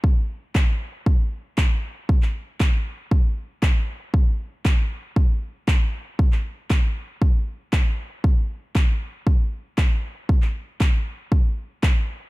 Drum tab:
CP |----x-------x---|-x--x-------x---|----x-------x---|-x--x-------x---|
BD |o---o---o---o---|o---o---o---o---|o---o---o---o---|o---o---o---o---|

CP |----x-------x---|-x--x-------x---|
BD |o---o---o---o---|o---o---o---o---|